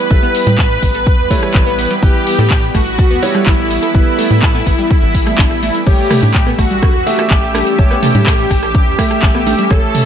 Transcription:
Already playing: E3 G3 B3 B4 B5
0.10 A1 G3 E4 A4 B4 A5, kick, closed hi-hat, shaker
0.23 B3 B4
0.35 B3 B4, open hi-hat, ride, shaker
0.47 A2 G3 G4, closed hi-hat, shaker
0.58 kick, clap, closed hi-hat, shaker
0.83 A1, kick, open hi-hat, ride, shaker
0.95 A4 A5, closed hi-hat, shaker
1.07 kick, closed hi-hat, shaker
1.19 E2
1.31 G3 A3 E4 A4 C#5, kick, open hi-hat, ride, shaker
1.43 cross-stick, closed hi-hat, shaker
1.54 A1 A4 A5, kick, clap, closed hi-hat, shaker
1.67 B3 B4
1.79 B3 B4, open hi-hat, ride, shaker
1.91 G3 G4, closed hi-hat, shaker
2.03 A1 G3 E4 G4 A4 B4, kick, closed hi-hat, shaker
2.27 open hi-hat, ride, shaker
2.39 A2 A4 A5, closed hi-hat, shaker
2.50 kick, clap, closed hi-hat, shaker
2.75 A1 A3 F#4 A4, kick, cross-stick, open hi-hat, ride, shaker
2.87 closed hi-hat, shaker
2.99 A4 A5, kick, closed hi-hat, shaker
3.11 E2 B3 B4
3.23 G3 B3 E4 B4 C#5, open hi-hat, ride, shaker
3.35 G3 G4, cross-stick, closed hi-hat, shaker
3.46 A1 E4, kick, clap, closed hi-hat, shaker
3.71 open hi-hat, ride, shaker
3.83 A4 A5, closed hi-hat, shaker
3.95 A1 G3 E4 B4, kick, closed hi-hat, shaker
4.19 A3 A4, open hi-hat, ride, shaker
4.31 A2, closed hi-hat, shaker
4.42 A4 A5, kick, clap, closed hi-hat, shaker
4.55 B3 B4
4.67 A1 B3 B4, kick, open hi-hat, ride, shaker
4.79 G3 G4, closed hi-hat, shaker
4.91 kick, closed hi-hat, shaker
5.03 A1
5.15 kick, open hi-hat, ride, shaker
5.27 A3 A4, cross-stick, closed hi-hat, shaker
5.38 A1 D4 D5, kick, clap, closed hi-hat, shaker
5.51 cross-stick
5.63 A3 A4, open hi-hat, ride, shaker
5.75 closed hi-hat, shaker
5.87 A1 G3 A3 C#4 G4 C#5 E6, kick, closed hi-hat, crash, shaker
6.11 A3 A4, cross-stick, mid tom, open hi-hat, ride, shaker
6.23 A2, closed hi-hat, high conga, shaker
6.34 A4 A5, kick, clap, closed hi-hat, shaker
6.47 B3 B4, cross-stick
6.59 A1 A3 F#4 A4, kick, cross-stick, open hi-hat, ride, shaker
6.71 G3 G4, closed hi-hat, shaker
6.83 kick, cross-stick, closed hi-hat, high conga, shaker
6.95 E2
7.07 A3 G4 E5, open hi-hat, ride, shaker
7.19 A4 A5, cross-stick, closed hi-hat, shaker
7.30 A1 G4, kick, clap, closed hi-hat, shaker
7.55 A3 A4, cross-stick, open hi-hat, ride, high conga, shaker
7.67 closed hi-hat, shaker
7.79 A1 A3 G4 A4 C#5 A5, kick, closed hi-hat, shaker
7.91 B3 B4, cross-stick
8.03 A3 A4, mid tom, open hi-hat, ride, shaker
8.15 A2 G3 G4, closed hi-hat, high conga, shaker
8.26 kick, cross-stick, clap, closed hi-hat, shaker
8.51 A1, kick, cross-stick, open hi-hat, ride, shaker
8.63 A4 A5, cross-stick, closed hi-hat, shaker
8.75 kick, closed hi-hat, high conga, shaker
8.87 E2
8.99 A3 G4 A4 E5, kick, cross-stick, open hi-hat, ride, shaker
9.11 cross-stick, closed hi-hat, shaker
9.22 A1 A4 A5, kick, clap, closed hi-hat, shaker
9.35 B3 B4, cross-stick
9.47 A3 A4, open hi-hat, ride, high conga, shaker
9.59 G3 G4, closed hi-hat, shaker
9.71 A1 A3 G4 A4 C#5 F#5, kick, cross-stick, closed hi-hat, shaker
9.95 mid tom, open hi-hat, ride, shaker

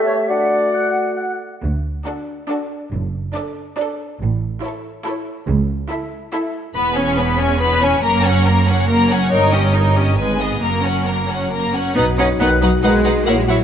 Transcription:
Already playing: A3 G4 E5
0.06 C#5
0.28 D3 F#4 D5 F#5
0.74 F#5
1.17 F#5
1.63 D2
2.06 D4 F#4 A4
2.49 D4 F#4 A4
2.92 F#1 F#2
3.34 D4 A4 D5
3.77 D4 A4 D5
4.21 A1 A2
4.63 E4 A4 C#5
5.05 E4 A4 C#5
5.47 C#2
5.90 E4 A4 E5
6.33 E4 A4 E5
6.74 E1 E2 B3 B4 B5
6.96 C#4 C#5 G#5
7.18 B3 B4 B5
7.38 C#4 C#5 G#5
7.60 B3 B4 B5
7.81 C#4 C#5 G#5
8.03 F#1 F#2 A#3 A#4 A#5
8.24 C#4 C#5 F#5
8.45 A#3 A#4 A#5
8.66 C#4 C#5 F#5
8.87 A#3 A#4 A#5
9.10 C#4 C#5 F#5
9.30 G1 G2 D#4 A#4 C#5
9.51 C#4 G4 D#5
9.74 D#4 A#4 C#5
9.96 C#4 G4 D#5
10.17 G#1 G#2 G#3 B4 G#5
10.39 B3 G#4 D#5
10.61 F#1 F#2 A#3 A#4 A#5
10.83 C#4 C#5 F#5
11.07 A#3 A#4 A#5
11.28 C#4 C#5 F#5
11.52 A#3 A#4 A#5
11.74 C#4 C#5 F#5
11.95 B1 B3 D#4 F#4 B4 F#5
12.18 C#4 D#4 B4 C#5 F#5
12.39 B1 D#3 B3 D#4 B4 F#5
12.61 F#3 D#4 F#4 B4 F#5
12.83 B1 D#3 G#3 D#4 G#4 B4 F#5
13.04 D#4 B4 F#5
13.25 A#1 A#3 E4 A#4 C#5 F#5
13.37 G#3 G#4
13.47 F#3 E4 F#4 C#5 F#5

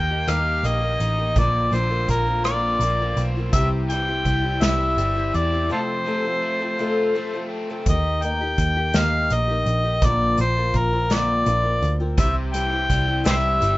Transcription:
Already playing: D#2 D#3 A#3 D#4 G5
0.11 A#3 D#4 G4
0.28 D#2 D#3 G3 A#3 D#4 G4 F5, cross-stick, closed hi-hat
0.63 A#1 G3 A#3 D#4 G4 D#5, closed hi-hat
0.81 A#3 D#4 G4
1.00 A1 D#4, closed hi-hat
1.18 A#3 D#4 G4
1.36 A#1 A#2 D3 F3 A#3 C4 F4 D5, kick, closed hi-hat
1.71 A#1 D3 F3 A#3 C4 F4 C5, closed hi-hat
1.90 F3 A#3 C4 F4
2.08 A#1 A#3 A#4, kick, closed hi-hat
2.26 F3 A#3 C4 F4
2.44 A#2 D3 F3 A#3 C4 F4 D5, cross-stick, closed hi-hat
2.80 A#1 F3 A#3, closed hi-hat
2.84 C4 F4
3.00 F3 A#3 C4 F4
3.17 B1 C4, closed hi-hat
3.37 F3 A#3 C4 F4
3.53 C2 C3 G3 C4 E4 E5, kick, closed hi-hat
3.57 G4
3.89 E3 G3 C4 G5, closed hi-hat
3.93 E4 G4
4.09 C4 E4 G4
4.25 C2 G3, kick, closed hi-hat
4.44 C4 E4 G4
4.61 C2 C3 G3 C4 E4 G4 E5, snare, closed hi-hat
4.97 G1 G3 C4 E4, closed hi-hat
5.01 G4
5.16 C4 E4 G4
5.34 E2 C4 D5, closed hi-hat
5.52 C4 E4 G4
5.70 F2 C3 F3 A3 C4 F4 A4 C5
6.05 C3 F3 A3 C4 A4
6.25 F3 A3 C4 A4
6.42 A3
6.61 F3 A3 C4 A4
6.77 F2 C3 F3 A3 C4 F4 A4
7.14 F3 A3 C4 A4
7.34 F3 A3 C4 A4
7.50 C4
7.70 F3 A3 C4 A4
7.86 D#2 D#3 A#3 D#4 D#5, kick, closed hi-hat
7.90 G4
8.22 D#3 A#3 D#4 G4 G5, closed hi-hat
8.41 A#3 D#4 G4
8.58 D#2, kick, closed hi-hat
8.77 A#3 D#4 G4
8.93 D#2 D#3 A#3 D#4 G4 F5, snare, closed hi-hat
9.30 A#1 D#3 A#3 D#4 G4 D#5, closed hi-hat
9.48 A#3 D#4 G4
9.66 A#1, closed hi-hat
9.84 A#3 D#4 G4
10.02 A#1 A#2 D3 F3 A#3 C4 F4 D5, kick, closed hi-hat
10.38 A#1 F3 A#3 C4 F4 C5, closed hi-hat
10.57 F3 A#3 C4 F4
10.74 A#1 A#4, kick, closed hi-hat
10.93 F3 A#3 C4 F4
11.10 A#2 D3 F3 A#3 C4 F4 D5, snare, closed hi-hat
11.46 A#1 F3 A#3 C4 F4, closed hi-hat
11.63 F3 A#3 C4 F4
11.82 D2, closed hi-hat
12.00 F3 A#3 C4 F4
12.18 C2 C3 G3 C4 E4 G4 E5, kick, closed hi-hat
12.53 E3 G3 C4 E4 G4 G5, closed hi-hat
12.71 C4 E4 G4
12.90 C2 G3, kick, closed hi-hat
13.07 C4 E4 G4
13.24 C2 C3 G3 C4 E4 G4 C5 E5, snare, closed hi-hat
13.61 G1 G3 C4 E4 G4, closed hi-hat

